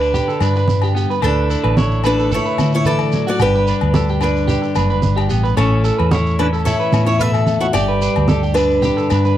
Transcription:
Already playing: D2 D3 D4 G4 B4
0.01 D4, shekere
0.14 G4, muted conga, low conga, shekere
0.28 A4, shekere
0.41 G2 D4 B4, muted conga, low agogo, shekere
0.56 B4, shekere
0.68 high conga, shekere
0.82 G4, low agogo, shekere
0.95 B3 G4, shekere
1.10 B4, shekere
1.21 D2 D3 A3 D4 E4 A4 B4, muted conga, low agogo, shekere
1.50 E4, shekere
1.64 A1 B4, low agogo
1.77 E4 C#5, high conga, shekere
1.91 shekere
2.04 A3 D4 E4 B4, low agogo, shekere
2.19 A4, shekere
2.31 E4 A4 C#5, muted conga, shekere
2.46 B4, shekere
2.58 A2 D3 E4, muted conga, high conga, low agogo, shekere
2.72 E4 C#5, shekere
2.85 E3 A4 B4 D5, shekere
2.99 low agogo, shekere
3.12 F#3, high conga, shekere
3.27 F#4 D5, shekere
3.39 G1 G2 D4 G4 B4, muted conga, low agogo, shekere
3.55 B4, shekere
3.67 D4 B4, shekere
3.81 D2, low agogo
3.94 G4 A4, high conga, shekere
4.09 G4, shekere
4.21 D3 D4 B4, muted conga, low agogo, shekere
4.36 shekere
4.48 G4, muted conga, low conga, shekere
4.62 muted clean electric guitar stroke, shekere
4.75 F#1 G2 D4 B4, muted conga, low agogo, shekere
4.90 B4, shekere
5.02 G1, high conga, shekere
5.16 G4, low agogo, shekere
5.29 A1 B3 G4, shekere
5.44 B4, shekere
5.57 A1 A2 C#4 E4 A4 C#5, muted conga, low agogo, shekere
5.84 A4, muted clean electric guitar stroke, shekere
5.99 E2 B4, low agogo
6.11 E4 C#5, high conga, shekere
6.26 shekere
6.39 E3 C#4 D4 B4, muted conga, low agogo
6.53 A4, shekere
6.65 E4 A4 C#5, muted conga, shekere
6.80 B4, shekere
6.92 E2 A2 C#4, muted conga, high conga, low agogo, shekere
7.06 E4 C#5, shekere
7.19 B2 A4 B4 E5, shekere
7.33 A4, low agogo, shekere
7.47 A2, high conga, shekere
7.60 E4 F#4 C#5, shekere
7.73 G1 G2 G4 D5, muted conga, low agogo, shekere
7.88 B4
8.02 D4 B4, shekere
8.16 D2, low agogo
8.28 G4 A4, high conga, shekere
8.43 G4, shekere
8.54 D3 D4 B4, muted conga, low agogo, shekere
8.71 shekere
8.82 G4, muted conga, low conga, shekere
8.97 A4, shekere
9.10 G2 D4 B4, muted conga, low agogo, shekere
9.25 B4, shekere

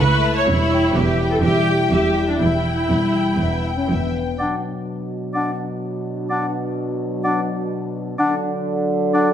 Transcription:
Already playing: A3 E4
0.00 C#2 C#3 B4 E5 C#6
0.24 A5
0.36 C#5
0.47 E1 E2 G3 E4 C#5 E5
0.73 G5
0.94 E1 E2 G4 B4 E5
1.20 G5
1.32 A4
1.42 E1 E2 G4 E5 G5
1.68 G5
1.91 E1 E2 G4 E5
2.16 G5
2.29 D4
2.39 E1 E2 E4 E5 G5
2.65 G5
2.90 E1 E2 G3 E5
3.15 G5
3.39 E1 E2 B3 E5
3.66 G5
3.78 C#4
3.89 E1 E2 B3 E5
4.17 G5
4.38 B2 F#3 D4 D5 F#5
5.33 D4 D5 F#5
6.30 D4 D5 F#5
7.24 D4 D5 F#5
8.18 D3 F#3 D4 D5 F#5
9.13 D4 D5 F#5

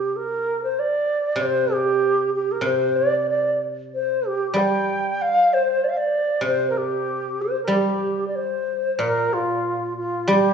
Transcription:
Already playing: C3 G4
0.16 A#4
0.63 C5
0.79 D5
1.32 C3 D5
1.42 C5
1.73 G4
2.35 G4
2.51 A#4
2.61 C3
2.66 C5
2.96 D5
3.29 D5
3.94 C5
4.27 G4
4.54 G3 G5
5.21 F5
5.53 C5
5.84 D5
5.89 F5
5.97 D5
6.41 C3
6.45 C5
6.70 A#4
6.77 G4
7.41 C5
7.63 A#4
7.68 G3
7.72 G4
8.27 D5
8.35 C5
8.99 A#2 A#4
9.33 F4
9.97 F4
10.28 G3 G4

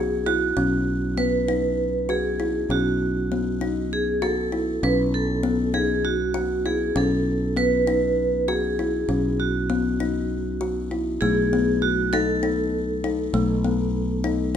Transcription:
Already playing: B1 F#4 G#4
0.26 E4 F#4
0.57 B1 C#4
1.17 B3 B4
1.48 D#4
2.09 F#4 G#4
2.40 E4
2.69 B1 C#4 F#4
3.32 B3
3.61 D#4
3.93 G#4
4.22 F#4 A4
4.52 E4
4.83 B1 C#4 B4
5.14 A4
5.43 B3
5.74 D#4 G#4
6.05 F#4
6.34 F#4
6.66 E4 G#4
6.96 B1 C#4 A4
7.57 B3 B4
7.87 D#4
8.48 F#4 G#4
8.79 E4
9.08 B1 C#4
9.40 F#4
9.70 B3
10.00 D#4
10.61 F#4
10.91 E4
11.21 B1 A3 G#4
11.53 B3
11.82 F#4
12.13 D#4 A4
12.43 D#4
13.04 D#4
13.33 B1 A3
13.65 B3
14.24 D#4

